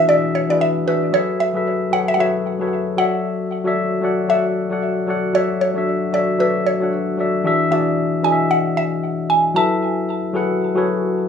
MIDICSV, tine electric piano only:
0, 0, Header, 1, 2, 480
1, 0, Start_track
1, 0, Tempo, 526316
1, 1033, Time_signature, 4, 2, 24, 8
1, 10292, End_track
2, 0, Start_track
2, 0, Title_t, "Tine electric piano"
2, 0, Program_c, 0, 4
2, 0, Control_c, 0, 64, 127
2, 0, Note_on_c, 0, 52, 67
2, 0, Note_on_c, 0, 62, 62
2, 0, Note_on_c, 0, 66, 61
2, 0, Note_on_c, 0, 68, 61
2, 0, Note_on_c, 0, 76, 76
2, 0, Note_on_c, 0, 78, 78
2, 62, Note_off_c, 0, 52, 0
2, 62, Note_on_c, 0, 52, 76
2, 69, Note_off_c, 0, 62, 0
2, 69, Note_on_c, 0, 62, 64
2, 77, Note_off_c, 0, 66, 0
2, 77, Note_on_c, 0, 66, 67
2, 84, Note_off_c, 0, 68, 0
2, 84, Note_on_c, 0, 68, 68
2, 92, Note_off_c, 0, 76, 0
2, 92, Note_on_c, 0, 76, 80
2, 363, Note_off_c, 0, 52, 0
2, 367, Note_off_c, 0, 62, 0
2, 370, Note_off_c, 0, 66, 0
2, 374, Note_off_c, 0, 68, 0
2, 378, Note_off_c, 0, 76, 0
2, 441, Note_on_c, 0, 52, 70
2, 449, Note_on_c, 0, 62, 65
2, 456, Note_on_c, 0, 66, 65
2, 464, Note_on_c, 0, 68, 66
2, 471, Note_on_c, 0, 71, 77
2, 727, Note_off_c, 0, 52, 0
2, 731, Note_off_c, 0, 62, 0
2, 734, Note_off_c, 0, 66, 0
2, 738, Note_off_c, 0, 68, 0
2, 742, Note_off_c, 0, 71, 0
2, 782, Note_on_c, 0, 52, 65
2, 790, Note_on_c, 0, 62, 62
2, 797, Note_on_c, 0, 66, 65
2, 805, Note_on_c, 0, 68, 62
2, 812, Note_on_c, 0, 76, 72
2, 987, Note_off_c, 0, 52, 0
2, 991, Note_off_c, 0, 62, 0
2, 995, Note_off_c, 0, 66, 0
2, 998, Note_off_c, 0, 68, 0
2, 1002, Note_off_c, 0, 76, 0
2, 1021, Note_on_c, 0, 54, 71
2, 1027, Note_on_c, 0, 66, 68
2, 1033, Note_on_c, 0, 68, 66
2, 1039, Note_on_c, 0, 69, 65
2, 1043, Control_c, 0, 64, 0
2, 1045, Note_on_c, 0, 71, 68
2, 1050, Note_off_c, 0, 78, 0
2, 1051, Note_on_c, 0, 76, 77
2, 1186, Control_c, 0, 64, 127
2, 1323, Note_off_c, 0, 54, 0
2, 1326, Note_off_c, 0, 66, 0
2, 1329, Note_off_c, 0, 68, 0
2, 1332, Note_off_c, 0, 69, 0
2, 1335, Note_off_c, 0, 71, 0
2, 1338, Note_off_c, 0, 76, 0
2, 1400, Note_on_c, 0, 54, 74
2, 1406, Note_on_c, 0, 66, 64
2, 1412, Note_on_c, 0, 68, 64
2, 1418, Note_on_c, 0, 69, 67
2, 1424, Note_on_c, 0, 71, 63
2, 1430, Note_on_c, 0, 76, 77
2, 1686, Note_off_c, 0, 54, 0
2, 1689, Note_off_c, 0, 66, 0
2, 1692, Note_off_c, 0, 68, 0
2, 1695, Note_off_c, 0, 69, 0
2, 1698, Note_off_c, 0, 71, 0
2, 1701, Note_off_c, 0, 76, 0
2, 1741, Note_on_c, 0, 54, 71
2, 1747, Note_on_c, 0, 66, 62
2, 1753, Note_on_c, 0, 68, 65
2, 1759, Note_on_c, 0, 69, 65
2, 1765, Note_on_c, 0, 71, 62
2, 1771, Note_on_c, 0, 73, 79
2, 1947, Note_off_c, 0, 54, 0
2, 1950, Note_off_c, 0, 66, 0
2, 1953, Note_off_c, 0, 68, 0
2, 1956, Note_off_c, 0, 69, 0
2, 1959, Note_off_c, 0, 71, 0
2, 1962, Note_off_c, 0, 73, 0
2, 1981, Note_on_c, 0, 54, 75
2, 1987, Note_on_c, 0, 66, 65
2, 1993, Note_on_c, 0, 68, 66
2, 1999, Note_on_c, 0, 69, 66
2, 2005, Note_on_c, 0, 71, 68
2, 2011, Note_on_c, 0, 73, 83
2, 2282, Note_off_c, 0, 54, 0
2, 2285, Note_off_c, 0, 66, 0
2, 2288, Note_off_c, 0, 68, 0
2, 2291, Note_off_c, 0, 69, 0
2, 2295, Note_off_c, 0, 71, 0
2, 2298, Note_off_c, 0, 73, 0
2, 2361, Note_on_c, 0, 54, 71
2, 2367, Note_on_c, 0, 66, 66
2, 2373, Note_on_c, 0, 68, 65
2, 2379, Note_on_c, 0, 69, 66
2, 2385, Note_on_c, 0, 71, 64
2, 2391, Note_on_c, 0, 73, 77
2, 2647, Note_off_c, 0, 54, 0
2, 2650, Note_off_c, 0, 66, 0
2, 2653, Note_off_c, 0, 68, 0
2, 2656, Note_off_c, 0, 69, 0
2, 2659, Note_off_c, 0, 71, 0
2, 2662, Note_off_c, 0, 73, 0
2, 2702, Note_on_c, 0, 54, 72
2, 2708, Note_on_c, 0, 66, 64
2, 2714, Note_on_c, 0, 69, 65
2, 2719, Note_on_c, 0, 73, 66
2, 2723, Control_c, 0, 64, 0
2, 2726, Note_on_c, 0, 74, 67
2, 2732, Note_on_c, 0, 76, 81
2, 2886, Control_c, 0, 64, 127
2, 3187, Note_off_c, 0, 54, 0
2, 3190, Note_off_c, 0, 66, 0
2, 3193, Note_off_c, 0, 69, 0
2, 3196, Note_off_c, 0, 73, 0
2, 3199, Note_off_c, 0, 74, 0
2, 3202, Note_off_c, 0, 76, 0
2, 3321, Note_on_c, 0, 54, 85
2, 3327, Note_on_c, 0, 66, 79
2, 3333, Note_on_c, 0, 69, 77
2, 3338, Note_on_c, 0, 73, 77
2, 3345, Note_on_c, 0, 74, 79
2, 3351, Note_on_c, 0, 76, 99
2, 3607, Note_off_c, 0, 54, 0
2, 3610, Note_off_c, 0, 66, 0
2, 3613, Note_off_c, 0, 69, 0
2, 3616, Note_off_c, 0, 73, 0
2, 3619, Note_off_c, 0, 74, 0
2, 3622, Note_off_c, 0, 76, 0
2, 3661, Note_on_c, 0, 54, 80
2, 3667, Note_on_c, 0, 66, 76
2, 3673, Note_on_c, 0, 69, 75
2, 3679, Note_on_c, 0, 73, 77
2, 3685, Note_on_c, 0, 74, 72
2, 3691, Note_on_c, 0, 78, 92
2, 3866, Note_off_c, 0, 54, 0
2, 3870, Note_off_c, 0, 66, 0
2, 3872, Note_off_c, 0, 69, 0
2, 3876, Note_off_c, 0, 73, 0
2, 3879, Note_off_c, 0, 74, 0
2, 3882, Note_off_c, 0, 78, 0
2, 3902, Note_on_c, 0, 54, 75
2, 3908, Note_on_c, 0, 66, 67
2, 3914, Note_on_c, 0, 69, 68
2, 3920, Note_on_c, 0, 73, 67
2, 3926, Note_on_c, 0, 74, 68
2, 3932, Note_on_c, 0, 78, 81
2, 4203, Note_off_c, 0, 54, 0
2, 4206, Note_off_c, 0, 66, 0
2, 4209, Note_off_c, 0, 69, 0
2, 4212, Note_off_c, 0, 73, 0
2, 4215, Note_off_c, 0, 74, 0
2, 4218, Note_off_c, 0, 78, 0
2, 4281, Note_on_c, 0, 54, 74
2, 4287, Note_on_c, 0, 66, 66
2, 4293, Note_on_c, 0, 69, 67
2, 4299, Note_on_c, 0, 73, 63
2, 4305, Note_on_c, 0, 74, 65
2, 4311, Note_on_c, 0, 78, 81
2, 4567, Note_off_c, 0, 54, 0
2, 4570, Note_off_c, 0, 66, 0
2, 4573, Note_off_c, 0, 69, 0
2, 4576, Note_off_c, 0, 73, 0
2, 4579, Note_off_c, 0, 74, 0
2, 4582, Note_off_c, 0, 78, 0
2, 4622, Note_on_c, 0, 54, 79
2, 4628, Note_on_c, 0, 66, 78
2, 4634, Note_on_c, 0, 69, 76
2, 4640, Note_on_c, 0, 73, 72
2, 4646, Note_on_c, 0, 74, 73
2, 4652, Note_on_c, 0, 78, 95
2, 4827, Note_off_c, 0, 54, 0
2, 4830, Note_off_c, 0, 66, 0
2, 4833, Note_off_c, 0, 69, 0
2, 4836, Note_off_c, 0, 73, 0
2, 4839, Note_off_c, 0, 74, 0
2, 4842, Note_off_c, 0, 78, 0
2, 4861, Note_on_c, 0, 54, 74
2, 4867, Note_on_c, 0, 66, 65
2, 4873, Note_on_c, 0, 69, 65
2, 4879, Note_on_c, 0, 73, 69
2, 4885, Note_on_c, 0, 74, 67
2, 4891, Note_on_c, 0, 76, 81
2, 5162, Note_off_c, 0, 54, 0
2, 5165, Note_off_c, 0, 66, 0
2, 5169, Note_off_c, 0, 69, 0
2, 5172, Note_off_c, 0, 73, 0
2, 5175, Note_off_c, 0, 74, 0
2, 5178, Note_off_c, 0, 76, 0
2, 5240, Note_on_c, 0, 54, 73
2, 5246, Note_on_c, 0, 66, 67
2, 5252, Note_on_c, 0, 69, 65
2, 5258, Note_on_c, 0, 73, 65
2, 5264, Note_on_c, 0, 62, 63
2, 5270, Note_on_c, 0, 76, 80
2, 5526, Note_off_c, 0, 54, 0
2, 5529, Note_off_c, 0, 66, 0
2, 5532, Note_off_c, 0, 69, 0
2, 5535, Note_off_c, 0, 73, 0
2, 5538, Note_off_c, 0, 62, 0
2, 5541, Note_off_c, 0, 76, 0
2, 5582, Note_on_c, 0, 54, 71
2, 5588, Note_on_c, 0, 66, 66
2, 5593, Note_on_c, 0, 69, 63
2, 5599, Note_on_c, 0, 73, 63
2, 5605, Note_on_c, 0, 74, 63
2, 5611, Note_on_c, 0, 76, 80
2, 5787, Note_off_c, 0, 54, 0
2, 5790, Note_off_c, 0, 66, 0
2, 5793, Note_off_c, 0, 69, 0
2, 5796, Note_off_c, 0, 73, 0
2, 5799, Note_off_c, 0, 74, 0
2, 5802, Note_off_c, 0, 76, 0
2, 5822, Note_on_c, 0, 54, 74
2, 5828, Note_on_c, 0, 66, 67
2, 5834, Note_on_c, 0, 69, 69
2, 5840, Note_on_c, 0, 73, 66
2, 5846, Note_on_c, 0, 74, 67
2, 5852, Note_on_c, 0, 76, 82
2, 6123, Note_off_c, 0, 54, 0
2, 6126, Note_off_c, 0, 66, 0
2, 6129, Note_off_c, 0, 69, 0
2, 6132, Note_off_c, 0, 73, 0
2, 6135, Note_off_c, 0, 74, 0
2, 6138, Note_off_c, 0, 76, 0
2, 6201, Note_on_c, 0, 54, 71
2, 6207, Note_on_c, 0, 66, 65
2, 6213, Note_on_c, 0, 69, 66
2, 6219, Note_on_c, 0, 73, 66
2, 6225, Note_on_c, 0, 62, 68
2, 6232, Note_on_c, 0, 78, 79
2, 6487, Note_off_c, 0, 54, 0
2, 6490, Note_off_c, 0, 66, 0
2, 6493, Note_off_c, 0, 69, 0
2, 6496, Note_off_c, 0, 73, 0
2, 6499, Note_off_c, 0, 62, 0
2, 6502, Note_off_c, 0, 78, 0
2, 6542, Note_on_c, 0, 54, 69
2, 6548, Note_on_c, 0, 66, 64
2, 6554, Note_on_c, 0, 69, 62
2, 6560, Note_on_c, 0, 73, 61
2, 6566, Note_on_c, 0, 74, 65
2, 6572, Note_on_c, 0, 76, 77
2, 6747, Note_off_c, 0, 54, 0
2, 6750, Note_off_c, 0, 66, 0
2, 6753, Note_off_c, 0, 69, 0
2, 6756, Note_off_c, 0, 73, 0
2, 6759, Note_off_c, 0, 74, 0
2, 6762, Note_off_c, 0, 76, 0
2, 6782, Note_on_c, 0, 52, 88
2, 6789, Note_on_c, 0, 62, 85
2, 6797, Note_on_c, 0, 66, 82
2, 6803, Control_c, 0, 64, 0
2, 6804, Note_on_c, 0, 68, 84
2, 6812, Note_on_c, 0, 76, 105
2, 6966, Control_c, 0, 64, 127
2, 6987, Note_off_c, 0, 52, 0
2, 6991, Note_off_c, 0, 62, 0
2, 6995, Note_off_c, 0, 66, 0
2, 6998, Note_off_c, 0, 68, 0
2, 7002, Note_off_c, 0, 76, 0
2, 7023, Note_on_c, 0, 52, 81
2, 7030, Note_on_c, 0, 62, 75
2, 7038, Note_on_c, 0, 66, 74
2, 7045, Note_on_c, 0, 68, 73
2, 7053, Note_on_c, 0, 74, 84
2, 7427, Note_off_c, 0, 52, 0
2, 7431, Note_off_c, 0, 62, 0
2, 7435, Note_off_c, 0, 66, 0
2, 7438, Note_off_c, 0, 68, 0
2, 7442, Note_off_c, 0, 74, 0
2, 7503, Note_on_c, 0, 52, 76
2, 7510, Note_on_c, 0, 62, 67
2, 7518, Note_on_c, 0, 66, 70
2, 7525, Note_on_c, 0, 68, 70
2, 7533, Note_on_c, 0, 75, 68
2, 7590, Note_off_c, 0, 75, 0
2, 7591, Note_on_c, 0, 76, 83
2, 8284, Note_off_c, 0, 52, 0
2, 8287, Note_off_c, 0, 62, 0
2, 8291, Note_off_c, 0, 66, 0
2, 8295, Note_off_c, 0, 68, 0
2, 8327, Note_off_c, 0, 76, 0
2, 8702, Note_on_c, 0, 54, 78
2, 8708, Note_on_c, 0, 66, 72
2, 8714, Note_on_c, 0, 64, 72
2, 8720, Note_on_c, 0, 69, 73
2, 8726, Control_c, 0, 64, 0
2, 8726, Note_on_c, 0, 71, 73
2, 8732, Note_on_c, 0, 76, 89
2, 8875, Control_c, 0, 64, 127
2, 9299, Note_off_c, 0, 54, 0
2, 9302, Note_off_c, 0, 66, 0
2, 9305, Note_off_c, 0, 64, 0
2, 9308, Note_off_c, 0, 69, 0
2, 9311, Note_off_c, 0, 71, 0
2, 9314, Note_off_c, 0, 76, 0
2, 9422, Note_on_c, 0, 54, 86
2, 9428, Note_on_c, 0, 66, 83
2, 9435, Note_on_c, 0, 68, 85
2, 9441, Note_on_c, 0, 69, 81
2, 9447, Note_on_c, 0, 71, 81
2, 9453, Note_on_c, 0, 78, 103
2, 9723, Note_off_c, 0, 54, 0
2, 9726, Note_off_c, 0, 66, 0
2, 9729, Note_off_c, 0, 68, 0
2, 9732, Note_off_c, 0, 69, 0
2, 9735, Note_off_c, 0, 71, 0
2, 9738, Note_off_c, 0, 78, 0
2, 9802, Note_on_c, 0, 54, 91
2, 9808, Note_on_c, 0, 66, 83
2, 9814, Note_on_c, 0, 68, 87
2, 9820, Note_on_c, 0, 69, 84
2, 9826, Note_on_c, 0, 71, 86
2, 9832, Note_on_c, 0, 73, 103
2, 10292, Note_off_c, 0, 54, 0
2, 10292, Note_off_c, 0, 66, 0
2, 10292, Note_off_c, 0, 68, 0
2, 10292, Note_off_c, 0, 69, 0
2, 10292, Note_off_c, 0, 71, 0
2, 10292, Note_off_c, 0, 73, 0
2, 10292, End_track
0, 0, End_of_file